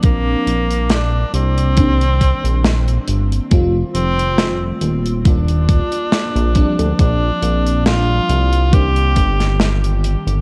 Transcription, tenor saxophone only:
X:1
M:4/4
L:1/8
Q:"Swing 16ths" 1/4=69
K:Bb
V:1 name="Tenor saxophone"
B,2 D C4 z | z C2 z D4 | D2 F2 G3 z |]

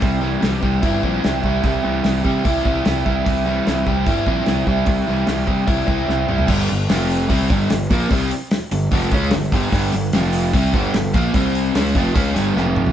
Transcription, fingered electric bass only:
X:1
M:4/4
L:1/8
Q:1/4=148
K:Gdor
V:1 name="Fingered electric bass" clef=bass
C,,2 C,, C,, G,,, B,,, C,, C,, | C,, C,, C,, C, C,, C,, C,, C,, | C,,2 C,, C,, G,,, B,,, C,, C,, | C,, C,, C,, C, C,, C,, C,, C,, |
G,,, G,,, F,,,2 C,, G,,, G,,, B,,, | C,, z2 G,,, F,,, ^C,, G,,, G,,, | G,,, G,,, F,,,2 C,, G,,, G,,, B,,, | C,,2 ^C,, F,,, C,, G,,, F,,,2 |]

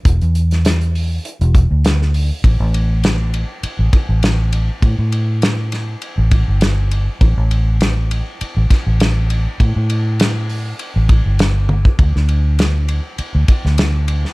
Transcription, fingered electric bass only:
X:1
M:4/4
L:1/16
Q:"Swing 16ths" 1/4=100
K:Glyd
V:1 name="Fingered electric bass" clef=bass
E,,, E,,8 E,,,2 D,,4- D,, | A,,, A,,,6- A,,, z A,,, z A,,,4- A,,, | A,, A,,8 A,,,2 G,,,4- G,,, | A,,, A,,,6- A,,, z A,,, z A,,,4- A,,, |
A,, A,,8 A,,,2 G,,,4- G,,, | D,, D,,6- D,, z D,, z D,,4- D,, |]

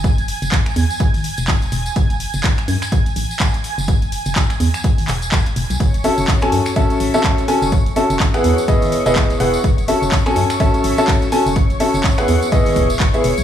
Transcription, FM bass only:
X:1
M:4/4
L:1/16
Q:"Swing 16ths" 1/4=125
K:F#dor
V:1 name="FM bass" clef=bass
F,,,2 z F,,, z2 E,, z2 G,,, z E,,,2 z E,,, z | F,,,2 z F,,, z2 F,, z3 A,,, z4 F,,,- | F,,,2 z F,,, z2 E,, z2 G,,, E,,,3 z E,,, B,,, | F,,,2 z F,,, z2 F,, z3 A,,, z4 F,,,- |
F,,,2 z F,,, z2 E,, z2 G,,, z E,,,2 z E,,, z | F,,,2 z F,,, z2 F,, z3 A,,, z4 F,,,- | F,,,2 z F,,, z2 E,, z2 G,,, E,,,3 z E,,, B,,, |]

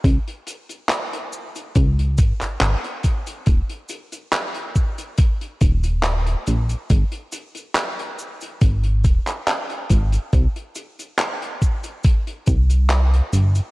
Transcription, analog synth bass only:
X:1
M:4/4
L:1/16
Q:"Swing 16ths" 1/4=70
K:Ebmix
V:1 name="Analog synth bass" clef=bass
D,, z6 z D,,2 A,,, A,,, A,,, z3 | E,,, z8 z E,,,3 z B,,, z | A,,, z6 z A,,,2 E,,, z3 A,,, z | C,, z8 z C,,3 z G,,, z |]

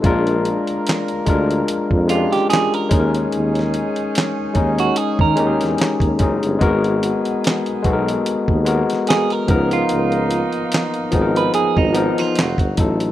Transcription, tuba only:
X:1
M:4/4
L:1/16
Q:"Swing 16ths" 1/4=73
K:G#m
V:1 name="Tuba" clef=bass
A,,,3 =D,, z D,, D,,2 ^E,, E,,2 z3 ^D,,2 | D,,3 D,, z D,, D,,2 z D, D,, E,, z D,, F,,, =G,,, | G,,,3 B,,, z B,,, B,,,2 D,, D,,2 z3 C,,2 | C,,3 G,,, z G,,, G,,,2 G,,, G,,,2 z =F,,, =G,,, =A,,,2 |]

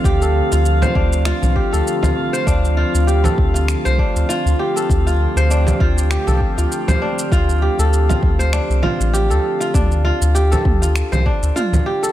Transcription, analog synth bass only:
X:1
M:4/4
L:1/16
Q:"Swing 16ths" 1/4=99
K:Dm
V:1 name="Analog synth bass" clef=bass
D,,2 z D,,2 z D,,2 z C,, z D,, z D,, z2 | D,,2 z D,,2 z D,,2 z C,, z D,, z D,, z2 | D,,2 z D,,2 z D,,2 z C,, z D,, z D,, z2 | D,,2 z D,,2 z D,,2 z C,, z A,,,2 D,, z2 |
D,,2 z D,,2 z D,,2 z C,, z D,, z D,, z2 |]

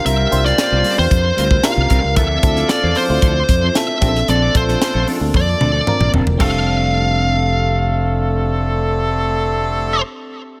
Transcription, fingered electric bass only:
X:1
M:4/4
L:1/16
Q:1/4=113
K:F
V:1 name="Fingered electric bass" clef=bass
C,,2 C,,2 z C,, z E,, F,,2 D,,2 z C,, C,, _D,, | D,,2 D,,2 z E,, z D,, D,,2 F,,2 z2 B,,,2 | B,,,2 B,,,2 z B,,, z D,, F,,2 D,,2 z B,,, _E,,, =E,,, | F,,,16- |
F,,,16 |]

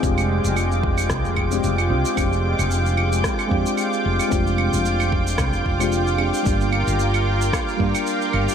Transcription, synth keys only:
X:1
M:4/4
L:1/16
Q:"Swing 16ths" 1/4=112
K:Fdor
V:1 name="Synth keys"
[A,CDFG]8- [A,CDFG]3 [A,CDFG]3 [A,CDFG]2 | [A,CDFG]8- [A,CDFG]2 [A,CDFG]6 | [A,CDFG]8- [A,CDFG]3 [A,CDFG]3 [A,CDFG]2 | [G,B,DFG]8- [G,B,DFG]2 [G,B,DFG]6 |]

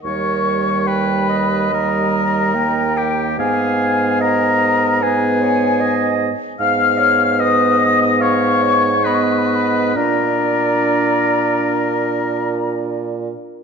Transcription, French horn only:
X:1
M:4/4
L:1/8
Q:1/4=72
K:Abdor
V:1 name="French horn"
=G,4 G,2 B,2 | C4 C3 z | C6 C2 | =D6- D z |]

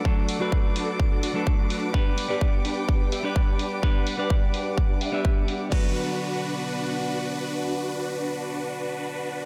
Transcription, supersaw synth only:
X:1
M:4/4
L:1/16
Q:1/4=127
K:Bm
V:1 name="Supersaw synth"
[DFA]2 z [DFA]2 z [DFA]3 [DFA] [DFd] [DFB]2 [DFB]3 | [DGB]2 z [DGB]2 z [DGB]3 [DGB] [DGe] [DGd]2 [DGd]3 | [DGB]2 z [DGB]2 z [DGB]3 [DGB] [DGe] [DGd]2 [DGd]3 | [DFB]16- |
[DFB]16 |]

